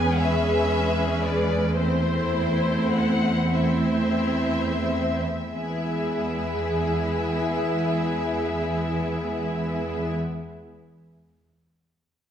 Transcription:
0.00 5.23 E2 soft
0.00 0.15 B3 soft
0.00 1.76 C#4 soft
0.00 0.14 G#4 soft
0.00 0.15 B4 soft
0.00 0.15 G#5 medium
0.17 1.73 G#3 soft
0.17 1.73 G#4 soft
0.17 1.73 B4 soft
0.17 1.23 E5 medium
1.24 1.78 D5 soft
1.77 3.51 A3 soft
1.77 3.49 C4 soft
1.77 3.50 E4 soft
1.77 3.49 C5 soft
1.77 2.89 C5 soft
2.92 3.53 F#5 soft
3.51 5.26 A3 soft
3.51 5.23 C4 soft
3.51 5.22 E4 soft
3.51 5.22 C5 soft
3.51 5.54 E5 soft
5.53 10.12 E2 soft
5.53 10.12 G#3 soft
5.53 10.13 B3 soft
5.53 10.12 E4 soft
5.53 10.12 G#4 soft
5.53 10.13 E5 soft

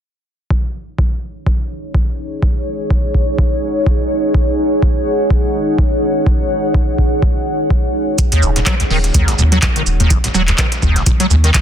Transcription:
0.50 11.61 D#4 medium
0.50 kick loud
0.66 11.61 C#5 medium
0.77 11.61 G#4 medium
0.99 kick loud
1.47 kick loud
1.90 11.61 F#5 medium
1.95 kick loud
2.43 kick loud
2.90 kick loud
3.15 kick medium
3.39 kick loud
3.87 kick loud
4.34 kick loud
4.83 kick loud
5.30 kick loud
5.79 kick loud
6.26 kick loud
6.74 kick loud
6.98 kick medium
7.22 kick loud
7.70 kick loud
8.18 kick loud
8.18 closed hi-hat medium
8.18 shaker medium
8.32 8.44 D#2 loud
8.32 closed hi-hat soft
8.42 8.50 D#1 loud
8.42 8.63 D#1 loud
8.42 shaker medium
8.56 8.59 D#1 medium
8.56 snare soft
8.56 closed hi-hat soft
8.66 8.74 F#3 loud
8.66 kick loud
8.66 snare loud
8.66 clap loud
8.66 closed hi-hat medium
8.66 shaker medium
8.80 8.83 C#2 medium
8.80 snare soft
8.80 closed hi-hat soft
8.90 9.11 D#1 loud
8.90 8.98 D#3 medium
8.90 open hi-hat medium
9.04 snare soft
9.04 closed hi-hat soft
9.14 9.29 D#2 loud
9.14 kick loud
9.14 closed hi-hat medium
9.14 shaker medium
9.28 9.34 D#1 loud
9.28 snare medium
9.28 closed hi-hat soft
9.38 9.43 D#1 medium
9.38 9.59 D#2 medium
9.38 shaker medium
9.52 9.58 F#3 loud
9.52 closed hi-hat soft
9.62 9.67 C#2 medium
9.62 kick loud
9.62 snare loud
9.62 clap loud
9.62 closed hi-hat medium
9.62 shaker medium
9.76 9.82 D#3 medium
9.76 closed hi-hat soft
9.86 10.07 D#1 loud
9.86 shaker medium
10.00 10.12 D#2 loud
10.00 closed hi-hat soft
10.10 10.18 D#1 loud
10.10 kick loud
10.10 closed hi-hat medium
10.10 shaker medium
10.24 10.27 D#1 medium
10.24 snare soft
10.24 closed hi-hat soft
10.34 10.55 D#1 medium
10.34 10.42 F#3 loud
10.34 snare medium
10.34 shaker medium
10.48 10.52 C#2 medium
10.48 clap soft
10.48 closed hi-hat soft
10.58 10.66 D#3 medium
10.58 kick loud
10.58 snare loud
10.58 clap loud
10.58 closed hi-hat medium
10.58 shaker medium
10.72 snare soft
10.72 closed hi-hat medium
10.82 11.03 D#1 loud
10.82 10.97 D#2 loud
10.82 kick medium
10.82 shaker medium
10.96 11.02 D#1 loud
10.96 snare soft
10.96 closed hi-hat soft
11.06 11.11 D#1 medium
11.06 kick loud
11.06 closed hi-hat medium
11.06 shaker medium
11.20 11.26 F#3 loud
11.20 snare soft
11.20 closed hi-hat soft
11.30 11.35 C#2 medium
11.30 11.51 D#2 medium
11.30 shaker medium
11.44 11.50 D#3 medium
11.44 snare soft
11.44 closed hi-hat soft
11.54 kick loud
11.54 snare loud
11.54 clap loud
11.54 closed hi-hat medium
11.54 shaker medium

